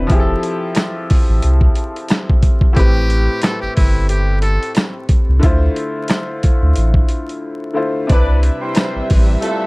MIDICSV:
0, 0, Header, 1, 7, 480
1, 0, Start_track
1, 0, Key_signature, 0, "major"
1, 0, Tempo, 666667
1, 71, Time_signature, 4, 2, 24, 8
1, 6959, End_track
2, 0, Start_track
2, 0, Title_t, "Muted trumpet"
2, 0, Program_c, 0, 59
2, 1990, Note_on_c, 0, 67, 105
2, 2442, Note_off_c, 0, 67, 0
2, 2470, Note_on_c, 0, 69, 84
2, 2589, Note_off_c, 0, 69, 0
2, 2603, Note_on_c, 0, 67, 84
2, 2700, Note_off_c, 0, 67, 0
2, 2708, Note_on_c, 0, 64, 78
2, 2925, Note_off_c, 0, 64, 0
2, 2951, Note_on_c, 0, 67, 77
2, 3167, Note_off_c, 0, 67, 0
2, 3182, Note_on_c, 0, 69, 86
2, 3402, Note_off_c, 0, 69, 0
2, 6959, End_track
3, 0, Start_track
3, 0, Title_t, "Horn section"
3, 0, Program_c, 1, 61
3, 5833, Note_on_c, 1, 71, 117
3, 5833, Note_on_c, 1, 74, 115
3, 5834, Note_on_c, 1, 62, 118
3, 6024, Note_off_c, 1, 62, 0
3, 6024, Note_off_c, 1, 71, 0
3, 6024, Note_off_c, 1, 74, 0
3, 6198, Note_on_c, 1, 55, 96
3, 6198, Note_on_c, 1, 64, 88
3, 6198, Note_on_c, 1, 72, 100
3, 6527, Note_off_c, 1, 55, 0
3, 6527, Note_off_c, 1, 64, 0
3, 6527, Note_off_c, 1, 72, 0
3, 6779, Note_on_c, 1, 57, 100
3, 6779, Note_on_c, 1, 65, 92
3, 6779, Note_on_c, 1, 69, 101
3, 6959, Note_off_c, 1, 57, 0
3, 6959, Note_off_c, 1, 65, 0
3, 6959, Note_off_c, 1, 69, 0
3, 6959, End_track
4, 0, Start_track
4, 0, Title_t, "Grand piano"
4, 0, Program_c, 2, 0
4, 0, Control_c, 2, 64, 127
4, 0, Note_on_c, 2, 48, 62
4, 0, Note_on_c, 2, 60, 56
4, 0, Note_on_c, 2, 62, 58
4, 0, Note_on_c, 2, 64, 56
4, 0, Note_on_c, 2, 71, 65
4, 50, Note_on_c, 2, 53, 78
4, 61, Note_off_c, 2, 60, 0
4, 61, Note_on_c, 2, 60, 73
4, 73, Note_off_c, 2, 64, 0
4, 73, Note_on_c, 2, 64, 75
4, 76, Note_off_c, 2, 71, 0
4, 80, Control_c, 2, 64, 0
4, 84, Note_on_c, 2, 67, 73
4, 85, Note_off_c, 2, 62, 0
4, 86, Note_off_c, 2, 48, 0
4, 95, Note_on_c, 2, 68, 75
4, 135, Note_off_c, 2, 68, 0
4, 142, Note_on_c, 2, 69, 90
4, 190, Control_c, 2, 64, 127
4, 1951, Note_off_c, 2, 53, 0
4, 1957, Note_off_c, 2, 60, 0
4, 1963, Note_off_c, 2, 64, 0
4, 1964, Note_on_c, 2, 45, 69
4, 1968, Note_off_c, 2, 67, 0
4, 1976, Note_on_c, 2, 57, 64
4, 1987, Note_on_c, 2, 60, 64
4, 1998, Note_off_c, 2, 69, 0
4, 1999, Control_c, 2, 64, 0
4, 1999, Note_on_c, 2, 67, 66
4, 2010, Note_on_c, 2, 71, 77
4, 2131, Control_c, 2, 64, 127
4, 3869, Note_off_c, 2, 45, 0
4, 3875, Note_off_c, 2, 57, 0
4, 3880, Note_off_c, 2, 60, 0
4, 3884, Note_on_c, 2, 50, 84
4, 3886, Note_off_c, 2, 67, 0
4, 3892, Note_off_c, 2, 71, 0
4, 3896, Note_on_c, 2, 57, 74
4, 3907, Note_on_c, 2, 64, 76
4, 3918, Control_c, 2, 64, 0
4, 3918, Note_on_c, 2, 65, 80
4, 3929, Note_on_c, 2, 72, 91
4, 4030, Control_c, 2, 64, 127
4, 5549, Note_off_c, 2, 50, 0
4, 5554, Note_off_c, 2, 57, 0
4, 5560, Note_off_c, 2, 64, 0
4, 5566, Note_off_c, 2, 65, 0
4, 5569, Note_on_c, 2, 50, 59
4, 5571, Note_off_c, 2, 72, 0
4, 5574, Note_on_c, 2, 57, 53
4, 5580, Note_on_c, 2, 64, 53
4, 5586, Note_on_c, 2, 65, 55
4, 5591, Note_on_c, 2, 72, 67
4, 5811, Note_on_c, 2, 48, 73
4, 5820, Note_off_c, 2, 50, 0
4, 5822, Note_off_c, 2, 57, 0
4, 5823, Note_on_c, 2, 60, 66
4, 5825, Note_off_c, 2, 64, 0
4, 5828, Note_off_c, 2, 65, 0
4, 5831, Note_off_c, 2, 72, 0
4, 5834, Note_on_c, 2, 62, 63
4, 5841, Control_c, 2, 64, 0
4, 5845, Note_on_c, 2, 64, 63
4, 5856, Note_on_c, 2, 71, 78
4, 5983, Control_c, 2, 64, 127
4, 6959, Note_off_c, 2, 48, 0
4, 6959, Note_off_c, 2, 60, 0
4, 6959, Note_off_c, 2, 62, 0
4, 6959, Note_off_c, 2, 64, 0
4, 6959, Note_off_c, 2, 71, 0
4, 6959, End_track
5, 0, Start_track
5, 0, Title_t, "String section"
5, 0, Program_c, 3, 48
5, 5833, Note_on_c, 3, 48, 83
5, 5833, Note_on_c, 3, 55, 82
5, 5833, Note_on_c, 3, 60, 76
5, 5833, Note_on_c, 3, 76, 100
5, 6959, Note_off_c, 3, 48, 0
5, 6959, Note_off_c, 3, 55, 0
5, 6959, Note_off_c, 3, 60, 0
5, 6959, Note_off_c, 3, 76, 0
5, 6959, End_track
6, 0, Start_track
6, 0, Title_t, "Sub bass"
6, 0, Program_c, 4, 38
6, 75, Note_on_c, 4, 29, 107
6, 259, Note_off_c, 4, 29, 0
6, 929, Note_on_c, 4, 33, 89
6, 1010, Note_off_c, 4, 33, 0
6, 1036, Note_on_c, 4, 36, 99
6, 1219, Note_off_c, 4, 36, 0
6, 1996, Note_on_c, 4, 33, 108
6, 2364, Note_off_c, 4, 33, 0
6, 2609, Note_on_c, 4, 31, 49
6, 2651, Note_off_c, 4, 31, 0
6, 2720, Note_on_c, 4, 31, 95
6, 3299, Note_off_c, 4, 31, 0
6, 3808, Note_on_c, 4, 36, 99
6, 3889, Note_off_c, 4, 36, 0
6, 3914, Note_on_c, 4, 38, 101
6, 4098, Note_off_c, 4, 38, 0
6, 4769, Note_on_c, 4, 38, 82
6, 4849, Note_off_c, 4, 38, 0
6, 4875, Note_on_c, 4, 33, 100
6, 5059, Note_off_c, 4, 33, 0
6, 5834, Note_on_c, 4, 36, 105
6, 6120, Note_off_c, 4, 36, 0
6, 6448, Note_on_c, 4, 33, 50
6, 6490, Note_off_c, 4, 33, 0
6, 6560, Note_on_c, 4, 33, 102
6, 6742, Note_off_c, 4, 33, 0
6, 6959, End_track
7, 0, Start_track
7, 0, Title_t, "Drums"
7, 69, Note_on_c, 9, 42, 83
7, 72, Note_on_c, 9, 36, 115
7, 141, Note_off_c, 9, 42, 0
7, 144, Note_off_c, 9, 36, 0
7, 310, Note_on_c, 9, 42, 73
7, 382, Note_off_c, 9, 42, 0
7, 538, Note_on_c, 9, 42, 99
7, 550, Note_on_c, 9, 37, 87
7, 554, Note_on_c, 9, 54, 68
7, 556, Note_on_c, 9, 38, 108
7, 610, Note_off_c, 9, 42, 0
7, 622, Note_off_c, 9, 37, 0
7, 626, Note_off_c, 9, 54, 0
7, 628, Note_off_c, 9, 38, 0
7, 792, Note_on_c, 9, 46, 58
7, 797, Note_on_c, 9, 36, 91
7, 864, Note_off_c, 9, 46, 0
7, 869, Note_off_c, 9, 36, 0
7, 1026, Note_on_c, 9, 42, 95
7, 1098, Note_off_c, 9, 42, 0
7, 1159, Note_on_c, 9, 36, 94
7, 1231, Note_off_c, 9, 36, 0
7, 1263, Note_on_c, 9, 42, 71
7, 1335, Note_off_c, 9, 42, 0
7, 1413, Note_on_c, 9, 42, 45
7, 1485, Note_off_c, 9, 42, 0
7, 1501, Note_on_c, 9, 42, 76
7, 1510, Note_on_c, 9, 54, 69
7, 1515, Note_on_c, 9, 37, 91
7, 1521, Note_on_c, 9, 38, 113
7, 1573, Note_off_c, 9, 42, 0
7, 1582, Note_off_c, 9, 54, 0
7, 1587, Note_off_c, 9, 37, 0
7, 1593, Note_off_c, 9, 38, 0
7, 1652, Note_on_c, 9, 36, 92
7, 1724, Note_off_c, 9, 36, 0
7, 1746, Note_on_c, 9, 42, 75
7, 1747, Note_on_c, 9, 36, 96
7, 1818, Note_off_c, 9, 42, 0
7, 1819, Note_off_c, 9, 36, 0
7, 1880, Note_on_c, 9, 36, 95
7, 1952, Note_off_c, 9, 36, 0
7, 1991, Note_on_c, 9, 42, 82
7, 1993, Note_on_c, 9, 36, 116
7, 2063, Note_off_c, 9, 42, 0
7, 2065, Note_off_c, 9, 36, 0
7, 2231, Note_on_c, 9, 42, 73
7, 2303, Note_off_c, 9, 42, 0
7, 2459, Note_on_c, 9, 42, 95
7, 2471, Note_on_c, 9, 37, 89
7, 2473, Note_on_c, 9, 54, 70
7, 2477, Note_on_c, 9, 38, 108
7, 2531, Note_off_c, 9, 42, 0
7, 2543, Note_off_c, 9, 37, 0
7, 2545, Note_off_c, 9, 54, 0
7, 2549, Note_off_c, 9, 38, 0
7, 2712, Note_on_c, 9, 46, 57
7, 2717, Note_on_c, 9, 36, 90
7, 2784, Note_off_c, 9, 46, 0
7, 2789, Note_off_c, 9, 36, 0
7, 2945, Note_on_c, 9, 42, 95
7, 3017, Note_off_c, 9, 42, 0
7, 3182, Note_on_c, 9, 42, 71
7, 3254, Note_off_c, 9, 42, 0
7, 3331, Note_on_c, 9, 42, 46
7, 3403, Note_off_c, 9, 42, 0
7, 3418, Note_on_c, 9, 42, 77
7, 3428, Note_on_c, 9, 54, 68
7, 3432, Note_on_c, 9, 37, 91
7, 3438, Note_on_c, 9, 38, 109
7, 3490, Note_off_c, 9, 42, 0
7, 3500, Note_off_c, 9, 54, 0
7, 3504, Note_off_c, 9, 37, 0
7, 3510, Note_off_c, 9, 38, 0
7, 3663, Note_on_c, 9, 42, 75
7, 3666, Note_on_c, 9, 36, 92
7, 3735, Note_off_c, 9, 42, 0
7, 3738, Note_off_c, 9, 36, 0
7, 3908, Note_on_c, 9, 42, 85
7, 3911, Note_on_c, 9, 36, 117
7, 3980, Note_off_c, 9, 42, 0
7, 3983, Note_off_c, 9, 36, 0
7, 4149, Note_on_c, 9, 42, 74
7, 4221, Note_off_c, 9, 42, 0
7, 4377, Note_on_c, 9, 42, 94
7, 4389, Note_on_c, 9, 37, 87
7, 4393, Note_on_c, 9, 54, 70
7, 4395, Note_on_c, 9, 38, 113
7, 4449, Note_off_c, 9, 42, 0
7, 4461, Note_off_c, 9, 37, 0
7, 4465, Note_off_c, 9, 54, 0
7, 4467, Note_off_c, 9, 38, 0
7, 4630, Note_on_c, 9, 42, 79
7, 4636, Note_on_c, 9, 36, 89
7, 4702, Note_off_c, 9, 42, 0
7, 4708, Note_off_c, 9, 36, 0
7, 4864, Note_on_c, 9, 42, 94
7, 4936, Note_off_c, 9, 42, 0
7, 4997, Note_on_c, 9, 36, 96
7, 5069, Note_off_c, 9, 36, 0
7, 5102, Note_on_c, 9, 42, 74
7, 5174, Note_off_c, 9, 42, 0
7, 5251, Note_on_c, 9, 42, 45
7, 5323, Note_off_c, 9, 42, 0
7, 5828, Note_on_c, 9, 42, 85
7, 5831, Note_on_c, 9, 36, 116
7, 5900, Note_off_c, 9, 42, 0
7, 5903, Note_off_c, 9, 36, 0
7, 6069, Note_on_c, 9, 42, 77
7, 6141, Note_off_c, 9, 42, 0
7, 6299, Note_on_c, 9, 42, 98
7, 6310, Note_on_c, 9, 37, 90
7, 6313, Note_on_c, 9, 54, 69
7, 6317, Note_on_c, 9, 38, 110
7, 6371, Note_off_c, 9, 42, 0
7, 6382, Note_off_c, 9, 37, 0
7, 6385, Note_off_c, 9, 54, 0
7, 6389, Note_off_c, 9, 38, 0
7, 6551, Note_on_c, 9, 46, 60
7, 6557, Note_on_c, 9, 36, 93
7, 6623, Note_off_c, 9, 46, 0
7, 6629, Note_off_c, 9, 36, 0
7, 6785, Note_on_c, 9, 42, 94
7, 6857, Note_off_c, 9, 42, 0
7, 6959, End_track
0, 0, End_of_file